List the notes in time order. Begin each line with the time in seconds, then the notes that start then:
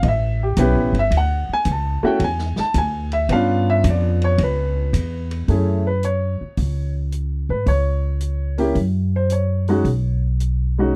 0.03 A1 D#5, kick, ride
0.08 E5
0.43 G4
0.57 B1 B3 C#4 E4 G4, kick, hi-hat pedal, ride
0.63 B4
0.75 A1
0.93 G1, ride
0.99 E5
1.11 D2, kick, ride
1.17 F#5
1.49 muted upright bass stroke
1.53 G#5
1.65 C#2, kick, hi-hat pedal, ride
1.71 A5
2.03 A3 C#4 E4 F#4 G5, muted upright bass stroke
2.20 E2, kick, ride
2.24 G#5
2.39 snare
2.56 A5, muted upright bass stroke, snare
2.74 D2 G#5, kick, hi-hat pedal, ride
3.12 E5, ride
3.29 G2 B3 C#4 D4 F4 F5, kick, ride
3.70 E5
3.84 F2, kick, hi-hat pedal, ride
3.90 D5
4.22 C#5, ride
4.38 C#2, kick, ride
4.43 B4
4.93 E2, kick, hi-hat pedal, ride
5.31 ride
5.48 F#2 A3 C#4 E4 G#4, kick, open hi-hat
5.87 B4
6.03 C#5, closed hi-hat
6.41 muted upright bass stroke
6.57 C#2, kick, open hi-hat
7.12 closed hi-hat
7.49 G#2 B4
7.66 C#2 C#5, kick, open hi-hat
8.21 closed hi-hat
8.58 A#3 C#4 E4 G4, open hi-hat
8.75 F#2, kick, open hi-hat
9.16 C5
9.30 C#5, closed hi-hat
9.68 G#3 C#4 D#4 F#4, open hi-hat
9.84 B1, kick, open hi-hat
10.40 closed hi-hat
10.78 G#3 C#4 D#4 F#4